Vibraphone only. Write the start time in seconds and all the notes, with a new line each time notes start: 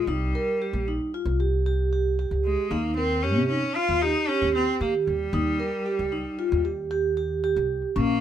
0.08 D#4
0.35 A#4
0.62 G4
0.88 D#4
1.14 F4
1.40 G4
1.66 G4
1.93 G4
2.19 G4
2.72 D#4
2.98 A#4
3.24 G4
3.50 D#4
3.76 F4
4.02 G4
4.29 G4
4.55 G4
4.81 G4
5.34 D#4
5.60 A#4
5.86 G4
6.12 D#4
6.39 F4
6.65 G4
6.91 G4
7.17 G4
7.44 G4
7.96 C#4